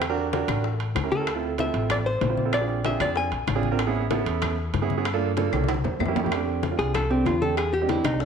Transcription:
Already playing: upright bass E2
0.02 high bongo, high conga, high timbale, claves
0.09 grand piano D4 F#4 G4 A#4
0.17 high bongo, high conga
0.33 grand piano D4 F#4 G4 A#4, high bongo, high conga, high timbale
0.48 upright bass A1, high bongo, high conga, high timbale, claves
0.64 high bongo, high conga
0.80 high bongo, high conga, high timbale
0.95 upright bass D2, high bongo, low bongo, high conga, high timbale, claves
1.04 grand piano C#4 E4 G4 A#4
1.12 hollow-body jazz guitar A4, high conga
1.19 grand piano C#4 E4 G4 A#4
1.27 high bongo, high conga, high timbale, claves
1.35 grand piano C4 E4 F4 A4
1.43 high bongo, high conga
1.58 grand piano C4 E4 F4 A4, hollow-body jazz guitar E5, high bongo, high conga, high timbale
1.74 upright bass A1, high bongo, high timbale
1.90 hollow-body jazz guitar D5, high bongo, high conga, low conga, high timbale, claves
2.06 hollow-body jazz guitar C5, high bongo, high conga
2.21 upright bass A#1, high bongo, low bongo, high conga, high timbale, low timbale
2.29 grand piano C4 E4 F4 C5
2.37 high conga
2.45 grand piano C4 E4 F4 A4
2.53 hollow-body jazz guitar D5, high bongo, high conga, high timbale, claves
2.61 grand piano C4 D4 F4 G#4
2.69 high bongo, high conga
2.85 grand piano C4 D4 F4 G#4, hollow-body jazz guitar E5, high bongo, high conga, high timbale
3.00 upright bass F2, hollow-body jazz guitar D5, high bongo, high conga, high timbale, claves
3.16 hollow-body jazz guitar G#5, high bongo, high conga
3.32 upright bass A#1, high bongo, high conga, high timbale
3.47 upright bass A1, high bongo, low bongo, high conga, high timbale, claves
3.55 grand piano C4 D4 F4 G#4
3.63 high conga
3.71 grand piano C4 D4 F4 A#4
3.79 high bongo, high conga, high timbale, claves
3.87 grand piano B3 C#4 E4 G#4
3.95 high bongo, high conga
4.11 grand piano B3 C#4 E4 A4, high bongo, high conga, high timbale
4.26 upright bass E2, high bongo, high timbale
4.42 high bongo, high conga, low conga, high timbale, claves
4.58 high bongo, high conga
4.74 upright bass G2, high bongo, low bongo, high conga, high timbale
4.82 grand piano B3 C#4 E4 G#4
4.90 high conga
4.97 grand piano B3 C#4 E4 G#4
5.05 high bongo, high timbale, claves
5.13 grand piano A#3 D4 F4 A4
5.21 high bongo, high conga
5.37 grand piano A#3 D4 F4 A4, high bongo, high conga, high timbale
5.52 upright bass C2, high conga, high timbale, claves
5.64 high conga
5.68 high bongo, high timbale
5.74 high conga
5.84 upright bass E2, grand piano C5, high bongo, low conga, low timbale
5.99 upright bass F2, grand piano E5, high bongo, low bongo, low timbale, claves
6.06 grand piano A#3 C#4 E4 G4, low conga
6.16 grand piano G5, low conga, low timbale
6.24 grand piano A#3 C#4 E4 G4, low conga
6.32 grand piano A3 C4 D4 G4, high bongo, high conga, high timbale, claves
6.47 high bongo, high conga
6.63 high bongo, high conga, high timbale
6.71 grand piano A3 C4 D4 F4
6.78 upright bass C2, hollow-body jazz guitar G#4, high bongo, high timbale
6.94 hollow-body jazz guitar A4, high bongo, high conga, low conga, high timbale, claves
7.10 grand piano A3 C4 D4 G4, hollow-body jazz guitar C4, high bongo, high conga
7.26 upright bass E2, hollow-body jazz guitar F4, high bongo, low bongo, high conga, high timbale, low timbale
7.42 grand piano A3 C4 D4 G4, hollow-body jazz guitar A4, high conga
7.57 hollow-body jazz guitar G#4, high bongo, high timbale, claves
7.73 hollow-body jazz guitar G4, high bongo, high conga
7.82 grand piano G#3 C4 D4 G4
7.89 hollow-body jazz guitar E4, high bongo, high conga, high timbale
8.04 upright bass C2, hollow-body jazz guitar D#4, high bongo, high conga, high timbale, claves
8.13 grand piano G#3 C4 D4 G4
8.20 hollow-body jazz guitar D4, high bongo, high conga

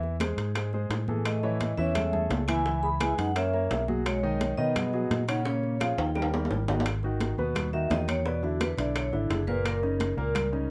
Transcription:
Already playing: fingered electric bass E2, grand piano E3 E4 E5
0.03 high bongo, high conga
0.20 grand piano G#3 G#4 C5, high bongo, high conga, high timbale, claves
0.37 fingered electric bass G#2, high bongo, high conga, high timbale
0.55 grand piano G#3 G#4 C5, high bongo, high conga, high timbale, claves
0.73 grand piano G#3 G#4 C5, high bongo, high conga
0.90 fingered electric bass A2, high bongo, low bongo, high conga, high timbale
1.08 grand piano E3 G#4 A4, high conga
1.25 alto flute A3, vibraphone D#5, high bongo, high conga, high timbale, claves
1.43 grand piano E3 E4 C#5, high bongo, high conga
1.60 high bongo, high conga, high timbale
1.77 fingered electric bass E2, grand piano E3 E4 E5, alto flute C#4, vibraphone E5, high bongo, high conga
1.95 grand piano G#3 G#4 A4, high bongo, high conga, low conga, high timbale, claves
2.13 grand piano A3 G#4 A4, high bongo, high conga, low conga
2.30 fingered electric bass C#2, high bongo, low bongo, high conga, high timbale, low timbale
2.48 grand piano E3 E4 E5, alto flute E4, vibraphone G#5, high conga, high timbale, claves
2.65 grand piano E3 E4 E5, high bongo, high conga
2.83 alto flute G#4, vibraphone B5, high bongo, high conga
3.00 grand piano G#3 G#4 B4, alto flute E4, vibraphone G#5, high bongo, high conga, high timbale, claves
3.18 fingered electric bass F#2, alto flute D#4, vibraphone F#5, high bongo, high conga, high timbale
3.35 grand piano A#3 A#4 C#5, alto flute C#4, vibraphone E5, high bongo, high conga, high timbale, claves
3.53 grand piano A#3 A#4 C#5, high bongo, high conga
3.71 fingered electric bass B1, high bongo, low bongo, high conga, high timbale, low timbale
3.88 grand piano F#3 F#4 G#4, high conga
4.05 alto flute G#3, vibraphone C#5, high bongo, high timbale, claves
4.23 grand piano D#3 D#4 D#5, high bongo, high conga
4.41 high bongo, high conga, high timbale
4.58 fingered electric bass B2, grand piano D#3 D#4 D#5, alto flute B3, vibraphone D#5, high bongo, high conga
4.76 grand piano F#3 F#4 G#4, high bongo, high conga, low conga, high timbale, claves
4.93 grand piano F#3 F#4 G#4, high bongo, high conga
5.10 fingered electric bass A#2, high bongo, low bongo, high conga, high timbale
5.28 grand piano C#3 C#4 C#5, alto flute D#4, vibraphone F#5, high timbale, claves
5.45 grand piano C#3 C#4 C#5, alto flute A#3, vibraphone C#5, high bongo, high conga
5.63 high bongo, high conga
5.80 grand piano F3 F4 G#4, alto flute C#4, vibraphone F5, high bongo, high conga, high timbale, claves
5.98 fingered electric bass D#2, alto flute D#4, vibraphone G5, high bongo, high conga, high timbale
6.15 grand piano G3 G4 A#4, high bongo, high conga, claves
6.22 high timbale
6.34 grand piano G3 G4 A#4, high conga, low timbale
6.45 low timbale
6.50 fingered electric bass G#1, low bongo, high conga
6.68 grand piano D#3 D#4 F#4, low bongo, high conga, low timbale
6.80 low timbale
6.86 high bongo, high timbale, claves
7.03 grand piano D#3 D#4 F#4, high bongo, high conga
7.20 high bongo, high conga, high timbale
7.38 fingered electric bass D#2, grand piano B2 B3 B4, high bongo, high conga
7.55 high bongo, high conga, low conga, high timbale, claves
7.73 grand piano D#3 D#4 F#4, vibraphone E5, high bongo, high conga
7.90 fingered electric bass E2, grand piano D#3 D#4 F#4, vibraphone D#5, high bongo, low bongo, high conga, high timbale, low timbale
8.08 vibraphone C#5, high conga, high timbale, claves
8.25 grand piano B2 B3 B4, vibraphone D5, high bongo, high conga
8.43 grand piano D3 D4 E4, vibraphone F#4, high bongo, high conga
8.61 vibraphone B4, high bongo, high conga, high timbale, claves
8.78 fingered electric bass B1, grand piano D3 D4 E4, vibraphone D5, high bongo, high conga, high timbale
8.95 vibraphone C#5, high bongo, high conga, high timbale, claves
9.12 fingered electric bass G#1, grand piano D3 D4 E4, vibraphone E4, high bongo, high conga
9.30 fingered electric bass F#1, vibraphone G#4, high bongo, low bongo, high conga, high timbale
9.47 grand piano A#2 A#3 A#4, vibraphone B4, high conga
9.65 vibraphone A#4, high bongo, high conga, high timbale, claves
9.82 grand piano C#3 C#4 D#4, high bongo, high conga
10.00 high bongo, high conga, high timbale
10.17 fingered electric bass C#2, grand piano A#2 A#3 A#4, high bongo, high conga
10.35 high bongo, high conga, low conga, high timbale, claves
10.52 grand piano C#3 C#4 D#4, high bongo, high conga

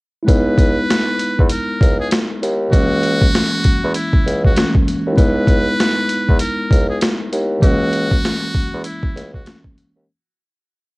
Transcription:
0.23 tine electric piano G#3 B3 E4
0.27 bassoon C#2, tine electric piano D#4, muted trumpet B4, kick, closed hi-hat
0.58 kick, closed hi-hat
0.90 snare, closed hi-hat
1.19 closed hi-hat
1.39 bassoon E2, kick
1.50 muted trumpet A#4, closed hi-hat
1.81 bassoon C#2, kick, closed hi-hat
2.00 muted trumpet G#4
2.11 snare, closed hi-hat
2.42 bassoon D#2, closed hi-hat
2.71 bassoon C#2, tine electric piano E3 G#3 A#3, muted trumpet F#4, kick, closed hi-hat
2.76 tine electric piano C#4
3.03 closed hi-hat
3.22 kick
3.35 snare, closed hi-hat
3.64 kick, closed hi-hat
3.84 bassoon E2
3.94 muted trumpet E4, closed hi-hat
4.13 kick
4.26 bassoon C#2, closed hi-hat
4.44 muted trumpet F#4, kick
4.55 tine electric piano E3 G#3 A#3 C#4, snare, closed hi-hat
4.75 kick
4.88 closed hi-hat
5.06 bassoon D#2
5.12 tine electric piano G#3 B3 E4
5.17 bassoon C#2, tine electric piano D#4, muted trumpet B4, kick, closed hi-hat
5.47 kick, closed hi-hat
5.80 snare, closed hi-hat
6.09 closed hi-hat
6.29 bassoon E2, kick
6.39 muted trumpet A#4, closed hi-hat
6.71 bassoon C#2, kick, closed hi-hat
6.89 muted trumpet G#4
7.01 snare, closed hi-hat
7.32 bassoon D#2, closed hi-hat
7.60 bassoon C#2, tine electric piano E3 G#3 A#3, muted trumpet F#4, kick, closed hi-hat
7.66 tine electric piano C#4
7.93 closed hi-hat
8.11 kick
8.25 snare, closed hi-hat
8.54 kick, open hi-hat
8.74 bassoon E2
8.84 muted trumpet E4, closed hi-hat
9.03 kick
9.16 bassoon C#2, snare, closed hi-hat
9.34 muted trumpet F#4, kick
9.45 tine electric piano E3 G#3 A#3 C#4, snare, closed hi-hat
9.64 kick
9.78 closed hi-hat
9.96 bassoon D#2

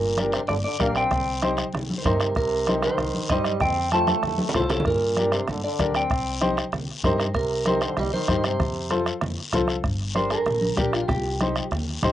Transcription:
Already playing: upright bass G1, trombone A#2, clean electric guitar A#4
0.17 upright piano D4 G4 A#4, bombo rim, high conga, short guiro
0.32 trombone C3, clean electric guitar C5, bombo rim, short guiro
0.47 upright bass G1, trombone D3, clean electric guitar D5, bombo rim, low conga, long guiro
0.64 trombone D3, clean electric guitar D5
0.79 upright bass A#1, trombone A#3, upright piano D4 G4 A#4, clean electric guitar F5, bombo low, bombo rim, high conga, short guiro
0.95 trombone C4, clean electric guitar G5, bombo rim, short guiro
1.11 upright bass C2, bombo low, bombo rim, low conga, long guiro
1.42 upright piano D#4 G4 C5, bombo rim, high conga, short guiro
1.57 bombo rim, short guiro
1.73 upright bass C2, bombo rim, low conga, long guiro
1.90 high conga
1.98 trombone D#3, clean electric guitar C5
2.04 upright bass G2, trombone C3, upright piano D#4 G4 C5, clean electric guitar A#4, bombo low, bombo rim, high conga, low conga, short guiro
2.20 bombo rim, short guiro
2.35 upright bass C2, trombone C3, clean electric guitar A#4, bombo low, bombo rim, long guiro
2.67 upright piano D#4 G4 C5, bombo rim, high conga, short guiro
2.82 trombone D#3, clean electric guitar C5, bombo rim, short guiro
2.98 upright bass C2, bombo rim, low conga, long guiro
3.14 high conga
3.29 upright bass G2, trombone G3, upright piano D#4 G4 C5, clean electric guitar D#5, bombo low, bombo rim, high conga, short guiro
3.44 bombo rim, short guiro
3.60 upright bass F2, trombone C4, clean electric guitar G5, bombo low, bombo rim, low conga, long guiro
3.91 trombone A3, upright piano F4 A4 C5, clean electric guitar A5, bombo rim, high conga, short guiro
4.07 bombo rim, high conga, short guiro
4.23 upright bass F2, bombo rim, long guiro
4.27 low conga
4.38 high conga
4.49 low conga
4.54 upright bass C2, trombone A2, upright piano F4 A4 C5, clean electric guitar A4, bombo low, bombo rim, short guiro
4.59 low conga
4.69 trombone A2, clean electric guitar A4, bombo rim, low conga, short guiro
4.80 low conga
4.85 upright bass G2, trombone A#2, clean electric guitar A#4, bombo low, bombo rim, long guiro
5.17 upright piano D4 G4 A#4, bombo rim, high conga, short guiro
5.32 trombone C3, clean electric guitar C5, bombo rim, short guiro
5.47 upright bass G2, trombone D3, clean electric guitar D5, bombo rim, low conga, long guiro
5.64 trombone D3, clean electric guitar D5
5.79 upright bass D2, upright piano D4 G4 A#4, bombo low, bombo rim, high conga, short guiro
5.94 trombone C4, clean electric guitar G5, bombo rim, short guiro
6.10 upright bass C2, bombo low, bombo rim, long guiro
6.41 upright piano D#4 G4 C5, bombo rim, high conga, short guiro
6.57 bombo rim, short guiro
6.72 upright bass C2, bombo rim, low conga, long guiro
7.03 upright bass G2, trombone C3, upright piano D#4 G4 C5, clean electric guitar A#4, bombo low, bombo rim, high conga, short guiro
7.18 trombone C3, clean electric guitar A#4, bombo rim, short guiro
7.34 upright bass C2, trombone C3, clean electric guitar A#4, bombo low, bombo rim, long guiro
7.65 trombone C3, upright piano D#4 G4 C5, clean electric guitar A#4, bombo rim, high conga, short guiro
7.81 trombone D3, clean electric guitar C5, bombo rim, short guiro
7.97 upright bass C2, trombone G3, clean electric guitar D#5, bombo rim, low conga, long guiro
8.13 trombone D#3, clean electric guitar C5, high conga
8.28 upright bass G2, upright piano D#4 G4 C5, bombo low, bombo rim, high conga, short guiro
8.44 trombone C3, clean electric guitar C5, bombo rim, short guiro
8.60 upright bass F2, bombo low, bombo rim, low conga, long guiro
8.90 upright piano F4 A4 C5, bombo rim, high conga, short guiro
9.06 bombo rim, short guiro
9.21 upright bass F2, bombo rim, low conga, long guiro
9.53 upright bass C2, upright piano F4 A4 C5, bombo low, bombo rim, high conga, low conga, short guiro
9.68 bombo rim, short guiro
9.84 upright bass G1, bombo low, bombo rim, long guiro
10.15 upright piano D4 G4 A#4, clean electric guitar C5, bombo rim, high conga, short guiro
10.30 clean electric guitar A#4, bombo rim, short guiro
10.46 upright bass A#1, bombo rim, low conga, long guiro
10.61 high conga
10.76 upright bass A#1, upright piano D4 G4 A#4, clean electric guitar G4, bombo low, bombo rim, high conga, short guiro
10.93 clean electric guitar F4, bombo rim, short guiro
11.08 upright bass C2, clean electric guitar G4, bombo low, bombo rim, low conga, long guiro
11.41 upright piano D#4 G4 C5, bombo rim, high conga, short guiro
11.56 bombo rim, short guiro
11.71 upright bass D#2, bombo rim, low conga, long guiro
12.03 upright bass A1, upright piano D#4 G4 C5, bombo low, bombo rim, high conga, low conga, short guiro

